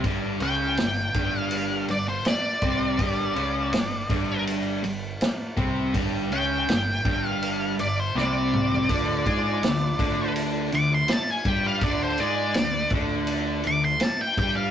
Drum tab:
RD |x-x-x-x-x-x-x-x-|x-x-x-x-x-x-x-x-|x-x-x-x-x-x-----|x-x-x-x-x-x-x-x-|
SD |----o-------o---|----o-------o---|----o-------o---|----o-------o---|
T2 |----------------|----------------|--------------o-|----------------|
FT |----------------|----------------|---------------o|----------------|
BD |o-----o-------o-|o-----o-------o-|o-----o---------|o-o---o-------o-|

RD |x-x-x-x-x-x-x-x-|
SD |----o-------o---|
T2 |----------------|
FT |----------------|
BD |o-----o-------o-|